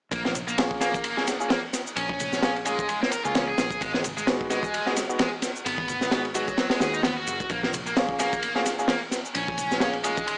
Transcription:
0.12 fingered electric bass A#1, distorted electric guitar A#3, kick, ride, shaker
0.25 distorted electric guitar A#3, snare, high conga
0.34 ride, low conga, shaker
0.48 distorted electric guitar A#3, shaker
0.58 grand piano A#3 C#4 F4 G#4, snare, ride, shaker
0.71 kick
0.81 distorted electric guitar A#3, grand piano A#3 C#4 F4 G#4, snare, ride, shaker
0.93 kick, high conga, shaker
1.04 ride, shaker
1.17 distorted electric guitar A#3, grand piano A#3 C#4 F4 G#4, snare
1.27 snare, ride, shaker
1.40 grand piano A#3 C#4 F4 G#4, shaker
1.50 distorted electric guitar A#3, snare, ride, high conga, shaker
1.73 snare, ride, shaker
1.87 shaker
1.96 fingered electric bass A#1, distorted electric guitar C#4, ride, shaker
2.09 kick, high conga
2.20 ride, low conga, shaker
2.33 snare, shaker
2.42 grand piano A#3 C#4 F4 G#4, distorted electric guitar C#4, snare, ride, shaker
2.56 ride
2.65 distorted electric guitar G#3, grand piano A#3 C#4 F4 G#4, ride, shaker
2.79 kick, high conga, shaker
2.89 distorted electric guitar G#3, ride, shaker
3.02 distorted electric guitar A#3, snare
3.12 distorted electric guitar A#4, ride, shaker
3.25 fingered electric bass C#2, grand piano A#3 C#4 F4 G#4, distorted electric guitar F4, shaker
3.35 grand piano A#3 C#4 F4 G#4, distorted electric guitar C#4, snare, ride, high conga, shaker
3.48 distorted electric guitar G#4
3.58 fingered electric bass A#1, snare, ride, shaker
3.71 kick, shaker
3.81 fingered electric bass G#1, distorted electric guitar G#3, kick, ride, shaker
3.94 distorted electric guitar G#3, snare, high conga
4.04 ride, low conga, shaker
4.17 distorted electric guitar G#3, shaker
4.27 grand piano G#3 B3 D#4 F#4, snare, ride, shaker
4.41 kick
4.50 distorted electric guitar G#3, grand piano G#3 B3 D#4 F#4, snare, ride, shaker
4.63 kick, high conga, shaker
4.74 ride, shaker
4.86 distorted electric guitar G#3, grand piano G#3 B3 D#4 F#4, snare
4.96 snare, ride, shaker
5.09 grand piano G#3 B3 D#4 F#4, shaker
5.19 distorted electric guitar G#3, snare, ride, high conga, shaker
5.42 snare, ride, shaker
5.56 shaker
5.66 fingered electric bass G#1, distorted electric guitar B3, ride, shaker
5.78 kick, high conga
5.88 ride, low conga, shaker
6.01 snare, shaker
6.11 grand piano G#3 B3 D#4 F#4, distorted electric guitar B3, snare, ride, shaker
6.25 ride
6.35 distorted electric guitar F#3, grand piano G#3 B3 D#4 F#4, ride, shaker
6.48 kick, high conga, shaker
6.58 distorted electric guitar F#3, snare, ride, shaker
6.70 distorted electric guitar G#3, snare, ride
6.80 fingered electric bass D#2, grand piano G#3 B3 D#4 F#4, distorted electric guitar G#4, snare, ride, shaker
6.94 distorted electric guitar D#4, shaker
7.03 distorted electric guitar B3, snare, ride, high conga, shaker
7.17 distorted electric guitar F#4
7.27 fingered electric bass F#1, ride, shaker
7.40 kick, shaker
7.50 fingered electric bass A#1, distorted electric guitar A#3, kick, ride, shaker
7.63 distorted electric guitar A#3, snare, high conga
7.73 ride, low conga, shaker
7.86 distorted electric guitar A#3, shaker
7.96 grand piano A#3 C#4 F4 G#4, snare, ride, shaker
8.09 kick
8.19 grand piano A#3 C#4 F4 G#4, distorted electric guitar A#3, snare, ride, shaker
8.33 kick, high conga, shaker
8.43 ride, shaker
8.55 grand piano A#3 C#4 F4 G#4, distorted electric guitar A#3, snare
8.66 snare, ride, shaker
8.79 grand piano A#3 C#4 F4 G#4, shaker
8.88 distorted electric guitar A#3, snare, ride, high conga, shaker
9.11 snare, ride, shaker
9.25 shaker
9.35 fingered electric bass A#1, distorted electric guitar C#4, ride, shaker
9.48 kick, high conga
9.58 ride, low conga, shaker
9.71 snare, shaker
9.80 grand piano A#3 C#4 F4 G#4, distorted electric guitar C#4, snare, ride, shaker
9.93 ride
10.04 distorted electric guitar G#3, grand piano A#3 C#4 F4 G#4, ride, shaker
10.17 kick, high conga, shaker
10.27 distorted electric guitar G#3, ride, shaker

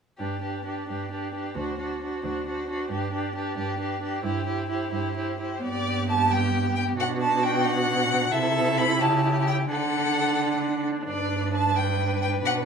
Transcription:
0.18 cello G2, viola D4, violin G4 B4
0.42 viola D4, violin G4 B4
0.65 viola D4, violin G4 B4
0.88 cello G2, viola D4, violin G4 B4
1.11 viola D4, violin G4 B4
1.34 viola D4, violin G4 B4
1.56 cello D2, viola D4, violin F#4 C5
1.78 viola D4, violin F#4 C5
2.01 viola D4, violin F#4 C5
2.24 cello D2, viola D4, violin F#4 C5
2.46 viola D4, violin F#4 C5
2.69 viola D4, violin F#4 C5
2.89 cello G2, viola D4, violin G4 B4
3.13 viola D4, violin G4 B4
3.35 viola D4, violin G4 B4
3.56 cello G2, viola D4, violin G4 B4
3.79 viola D4, violin G4 B4
4.02 viola D4, violin G4 B4
4.23 cello G2, viola E4, violin G4 C5
4.46 viola E4, violin G4 C5
4.70 viola E4, violin G4 C5
4.92 cello G2, viola E4, violin G4 C5
5.16 viola E4, violin G4 C5
5.39 viola E4, violin G4 C5
5.61 cello G2, viola B3, violin G4 D5
6.09 violin A5
6.31 violin G5
6.75 violin G5
6.98 cello B2, viola D4, violin F#4 F#5
7.21 violin A5
7.43 violin G5
7.64 violin F#5
8.31 cello C3, viola E4, violin A4 E5
8.78 violin B5
9.00 cello C#3, violin G4 A5
9.47 violin G5
9.69 cello D3, viola D4, violin A4 F#5
11.07 cello G2, violin B4 D5
11.54 violin A5
11.76 violin G5
12.21 violin G5
12.44 cello B2, viola D4, violin F#5

